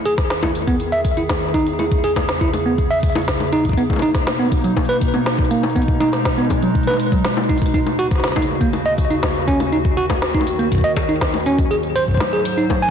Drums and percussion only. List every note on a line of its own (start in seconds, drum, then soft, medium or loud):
0.06 closed hi-hat medium
0.18 kick loud
0.18 snare medium
0.30 snare loud
0.30 closed hi-hat medium
0.43 kick loud
0.43 closed hi-hat soft
0.43 high bongo medium
0.55 closed hi-hat medium
0.67 kick loud
0.67 closed hi-hat medium
0.80 closed hi-hat medium
0.92 closed hi-hat soft
1.05 kick loud
1.05 closed hi-hat medium
1.17 closed hi-hat medium
1.29 kick loud
1.29 snare loud
1.29 closed hi-hat medium
1.29 high bongo medium
1.42 closed hi-hat soft
1.54 kick loud
1.54 closed hi-hat medium
1.67 closed hi-hat medium
1.79 closed hi-hat medium
1.79 high bongo medium
1.92 kick loud
1.92 closed hi-hat soft
2.04 closed hi-hat medium
2.16 kick loud
2.16 snare medium
2.16 closed hi-hat medium
2.16 high bongo medium
2.29 snare loud
2.29 closed hi-hat medium
2.41 kick loud
2.41 closed hi-hat soft
2.54 closed hi-hat medium
2.54 high bongo soft
2.78 kick loud
2.78 closed hi-hat medium
2.91 closed hi-hat soft
2.94 closed hi-hat soft
2.97 closed hi-hat soft
3.00 kick loud
3.00 closed hi-hat soft
3.03 closed hi-hat medium
3.06 closed hi-hat soft
3.09 closed hi-hat soft
3.12 closed hi-hat soft
3.15 closed hi-hat medium
3.15 high bongo medium
3.19 closed hi-hat soft
3.22 closed hi-hat soft
3.25 snare loud
3.25 closed hi-hat soft
3.28 kick loud
3.28 closed hi-hat medium
3.34 closed hi-hat soft
3.37 closed hi-hat soft
3.40 closed hi-hat soft
3.40 high bongo medium
3.49 closed hi-hat soft
3.53 closed hi-hat medium
3.57 closed hi-hat soft
3.65 kick medium
3.65 closed hi-hat medium
3.69 kick medium
3.73 kick medium
3.77 closed hi-hat medium
3.90 kick loud
3.90 closed hi-hat soft
3.90 high bongo soft
3.93 closed hi-hat soft
3.93 high bongo soft
3.96 closed hi-hat soft
3.96 high bongo medium
3.99 closed hi-hat soft
3.99 high bongo medium
4.02 closed hi-hat medium
4.15 kick loud
4.15 snare medium
4.15 closed hi-hat medium
4.27 snare loud
4.27 closed hi-hat medium
4.27 high bongo soft
4.39 closed hi-hat soft
4.43 closed hi-hat soft
4.46 closed hi-hat soft
4.49 kick loud
4.49 closed hi-hat soft
4.52 closed hi-hat medium
4.55 closed hi-hat soft
4.58 closed hi-hat soft
4.61 closed hi-hat soft
4.64 closed hi-hat medium
4.77 kick loud
4.77 closed hi-hat soft
4.77 high bongo medium
4.85 closed hi-hat soft
4.93 closed hi-hat soft
5.01 kick loud
5.01 closed hi-hat medium
5.14 closed hi-hat medium
5.14 high bongo soft
5.26 snare loud
5.26 closed hi-hat medium
5.39 kick loud
5.45 closed hi-hat soft
5.51 closed hi-hat medium
5.63 closed hi-hat soft
5.63 high bongo medium
5.70 closed hi-hat soft
5.76 kick loud
5.76 closed hi-hat medium
5.82 closed hi-hat soft
5.88 kick loud
5.88 closed hi-hat soft
6.01 closed hi-hat medium
6.01 high bongo soft
6.13 snare medium
6.13 closed hi-hat soft
6.25 kick loud
6.25 snare loud
6.25 closed hi-hat soft
6.38 closed hi-hat soft
6.50 kick loud
6.50 closed hi-hat medium
6.50 high bongo medium
6.63 closed hi-hat medium
6.75 kick loud
6.75 closed hi-hat soft
6.83 closed hi-hat soft
6.87 high bongo soft
6.90 closed hi-hat soft
6.90 high bongo soft
6.93 high bongo soft
6.97 closed hi-hat medium
6.97 high bongo soft
7.12 kick loud
7.12 closed hi-hat medium
7.25 snare loud
7.25 closed hi-hat medium
7.37 closed hi-hat soft
7.37 high bongo medium
7.49 kick loud
7.49 closed hi-hat soft
7.58 closed hi-hat medium
7.62 kick loud
7.62 closed hi-hat soft
7.66 closed hi-hat medium
7.74 kick loud
7.74 closed hi-hat soft
7.87 closed hi-hat soft
7.87 high bongo soft
7.99 closed hi-hat medium
8.11 kick loud
8.11 snare soft
8.11 closed hi-hat soft
8.15 snare soft
8.20 snare soft
8.24 snare loud
8.24 closed hi-hat soft
8.28 snare soft
8.32 snare medium
8.36 kick loud
8.36 closed hi-hat soft
8.36 high bongo medium
8.42 closed hi-hat medium
8.61 kick loud
8.61 closed hi-hat soft
8.73 closed hi-hat soft
8.73 high bongo soft
8.86 closed hi-hat soft
8.98 kick loud
8.98 closed hi-hat medium
9.11 closed hi-hat soft
9.23 kick loud
9.23 snare loud
9.23 closed hi-hat medium
9.23 high bongo medium
9.35 closed hi-hat soft
9.48 kick loud
9.48 closed hi-hat medium
9.60 closed hi-hat soft
9.60 high bongo medium
9.73 closed hi-hat soft
9.85 kick loud
9.85 closed hi-hat soft
9.97 closed hi-hat medium
10.10 kick loud
10.10 snare medium
10.10 closed hi-hat soft
10.10 high bongo medium
10.22 snare loud
10.22 closed hi-hat soft
10.35 kick loud
10.35 closed hi-hat soft
10.41 high bongo medium
10.47 closed hi-hat medium
10.59 closed hi-hat soft
10.72 kick loud
10.72 closed hi-hat soft
10.75 kick medium
10.78 kick medium
10.81 kick medium
10.81 closed hi-hat soft
10.97 kick loud
10.97 closed hi-hat medium
10.97 high bongo medium
11.09 closed hi-hat soft
11.21 kick loud
11.21 snare loud
11.21 closed hi-hat medium
11.34 closed hi-hat soft
11.34 high bongo medium
11.37 closed hi-hat soft
11.40 closed hi-hat soft
11.43 closed hi-hat soft
11.46 closed hi-hat medium
11.59 kick loud
11.59 closed hi-hat soft
11.71 closed hi-hat soft
11.83 closed hi-hat soft
11.96 closed hi-hat medium
12.08 kick soft
12.11 kick medium
12.14 kick medium
12.17 kick medium
12.17 snare loud
12.17 closed hi-hat soft
12.17 high bongo medium
12.33 closed hi-hat soft
12.45 closed hi-hat medium
12.58 closed hi-hat medium
12.70 kick loud
12.70 closed hi-hat soft
12.70 high bongo medium
12.82 closed hi-hat soft